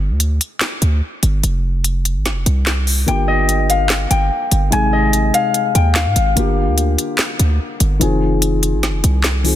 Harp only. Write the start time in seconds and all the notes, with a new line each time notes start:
3.08 G5
3.28 D#5
3.70 F5
4.10 G5
4.72 G#5
4.93 D#5
5.34 F5
5.75 G5
5.95 F5